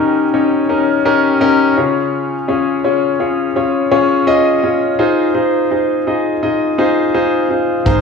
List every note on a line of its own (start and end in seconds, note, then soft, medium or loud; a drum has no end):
0.00 0.30 D#3 medium
0.00 0.34 C#4 medium
0.00 0.34 D#4 medium
0.00 0.34 G4 medium
0.00 0.69 A#4 loud
0.34 0.60 C#4 medium
0.34 0.60 D#4 medium
0.34 0.60 G4 medium
0.34 0.60 C#5 medium
0.69 0.96 C#4 medium
0.69 0.96 D#4 medium
0.69 0.96 G4 medium
0.69 0.96 A#4 medium
1.05 1.32 C#4 medium
1.05 1.32 D#4 medium
1.05 1.32 G4 medium
1.05 1.32 A#4 loud
1.41 1.67 C#4 loud
1.41 1.67 D#4 medium
1.41 1.68 G4 medium
1.41 1.68 A#4 loud
1.77 2.80 C#3 medium
1.77 2.34 C#4 medium
1.77 2.34 F4 medium
1.77 2.34 G#4 medium
1.77 2.34 C#5 medium
2.48 2.75 C#4 medium
2.48 2.75 F4 medium
2.48 2.75 G#4 medium
2.48 2.75 C#5 medium
2.84 3.11 C#4 medium
2.84 3.11 F4 medium
2.84 3.11 G#4 medium
2.84 3.11 C#5 medium
3.20 3.46 C#4 medium
3.20 3.47 F4 medium
3.20 3.47 G#4 medium
3.20 3.47 C#5 medium
3.56 3.82 C#4 medium
3.56 3.82 F4 medium
3.56 3.82 G#4 medium
3.56 3.83 C#5 medium
3.91 4.18 C#4 medium
3.91 4.18 F4 medium
3.91 4.18 G#4 medium
3.91 4.18 C#5 loud
4.27 4.54 C#4 medium
4.27 4.54 F4 medium
4.27 4.54 G#4 medium
4.27 4.54 D#5 loud
4.64 4.90 C#4 medium
4.64 4.90 F4 medium
4.64 4.90 G#4 medium
4.64 4.90 C#5 medium
4.99 5.26 D#4 medium
4.99 5.26 F4 medium
4.99 5.26 G#4 medium
4.99 5.26 C5 medium
5.35 5.61 D#4 medium
5.35 5.61 F4 medium
5.35 5.61 G#4 medium
5.35 5.61 C5 medium
5.71 5.97 D#4 medium
5.71 5.97 F4 medium
5.71 5.98 G#4 medium
5.71 5.98 C5 medium
6.07 6.33 D#4 medium
6.07 6.33 F4 medium
6.07 6.33 G#4 medium
6.07 6.33 D#5 medium
6.43 6.69 D#4 medium
6.43 6.69 F4 medium
6.43 6.69 G#4 medium
6.43 6.69 D#5 medium
6.78 7.05 D#4 medium
6.78 7.05 F4 medium
6.78 7.05 G#4 medium
6.78 7.05 C5 medium
7.14 7.41 D#4 medium
7.14 7.41 F4 medium
7.14 7.41 G#4 medium
7.14 7.41 C5 loud
7.50 7.77 D#4 medium
7.50 7.77 F4 medium
7.50 7.77 G#4 medium
7.50 7.77 C5 medium
7.86 8.01 G#1 medium
7.86 8.01 G#2 medium
7.86 8.01 D#4 medium
7.86 8.01 G#4 medium
7.86 8.01 A#4 medium
7.86 8.01 C5 loud
7.86 kick medium
7.86 closed hi-hat medium